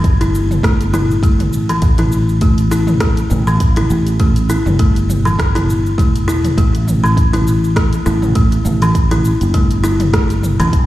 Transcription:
Already playing: G1
0.04 kick, closed hi-hat, mid tom, shaker
0.21 E4, closed hi-hat, shaker
0.35 shaker
0.51 mid tom, shaker
0.63 A3, kick, cross-stick, closed hi-hat, shaker
0.81 closed hi-hat, shaker
0.93 E4, mid tom, shaker
1.11 shaker
1.23 A3, kick, closed hi-hat, shaker
1.40 closed hi-hat, mid tom, shaker
1.53 A1, shaker
1.69 E3, closed hi-hat, shaker
1.82 A1, kick, closed hi-hat, shaker
1.98 E4, closed hi-hat, mid tom, shaker
2.12 shaker
2.29 shaker
2.41 A3, kick, closed hi-hat, mid tom, shaker
2.58 closed hi-hat, shaker
2.71 E4, shaker
2.87 mid tom, shaker
3.00 A3, kick, cross-stick, closed hi-hat, shaker
3.17 closed hi-hat, shaker
3.30 A1, mid tom, shaker
3.47 E3, shaker
3.60 kick, closed hi-hat, shaker
3.76 E4, closed hi-hat, mid tom, shaker
3.90 A1, shaker
4.07 closed hi-hat, shaker
4.20 A3, kick, closed hi-hat, mid tom, shaker
4.36 closed hi-hat, shaker
4.50 E4, shaker
4.66 G1, mid tom, shaker
4.79 A3, kick, closed hi-hat, shaker
4.96 closed hi-hat, shaker
5.10 mid tom, shaker
5.25 E3, shaker
5.39 kick, cross-stick, closed hi-hat, shaker
5.55 E4, closed hi-hat, mid tom, shaker
5.70 shaker
5.86 shaker
5.98 A3, kick, closed hi-hat, mid tom, shaker
6.16 closed hi-hat, shaker
6.28 E1 E4, shaker
6.45 closed hi-hat, mid tom, shaker
6.58 A1 A3, kick, closed hi-hat, shaker
6.75 closed hi-hat, shaker
6.88 mid tom, shaker
7.04 E3, shaker
7.17 kick, closed hi-hat, shaker
7.33 E4, closed hi-hat, mid tom, shaker
7.47 shaker
7.64 shaker
7.76 A3, kick, cross-stick, closed hi-hat, mid tom, shaker
7.93 closed hi-hat, shaker
8.06 A1 E4, shaker
8.22 mid tom, shaker
8.35 A3, kick, closed hi-hat, shaker
8.52 closed hi-hat, shaker
8.65 A1, mid tom, shaker
8.82 E3, closed hi-hat, shaker
8.95 kick, closed hi-hat, shaker
9.11 E4, closed hi-hat, mid tom, shaker
9.25 shaker
9.41 G1, closed hi-hat, shaker
9.54 A3, kick, closed hi-hat, mid tom, shaker
9.71 closed hi-hat, shaker
9.84 E4, shaker
10.00 closed hi-hat, mid tom, shaker
10.13 A3, kick, cross-stick, closed hi-hat, shaker
10.30 closed hi-hat, shaker
10.43 mid tom, shaker
10.60 A1 E3, closed hi-hat, shaker
10.73 E1, kick, closed hi-hat, shaker

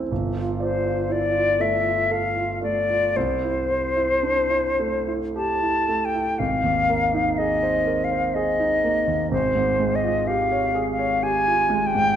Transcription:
Already playing: C4 D4 E4 A4
0.12 G1
0.36 F4
0.60 C5 D5
0.85 F4
1.09 E4 D5
1.34 F4
1.60 A3 E5
1.84 F4
2.11 A4 F5
2.36 F4
2.62 A3 D5
2.90 F4
3.16 C2 C5
3.44 E4
3.70 C5
3.96 E4
4.23 D4
4.49 E4
4.79 A3
5.07 E4
5.36 G4 A5
5.62 E4
5.88 A3
6.05 G5
6.14 E4
6.39 G#1 F5
6.64 D#2
6.89 A#3
7.14 D#4
7.38 G#4 D#5
7.63 C5
7.87 A#4
8.04 F5
8.12 C5
8.34 G#4 D#5
8.59 D#4
8.84 A#3
9.07 D#2
9.31 G#1 C5
9.55 G#2
9.80 G#3
9.95 D#5
10.04 F4
10.27 G4 F5
10.51 C#5
10.75 G#4
10.91 F5
10.99 C#5
11.23 G4 G#5
11.47 F4
11.70 G#3
11.87 G5
11.95 G#2

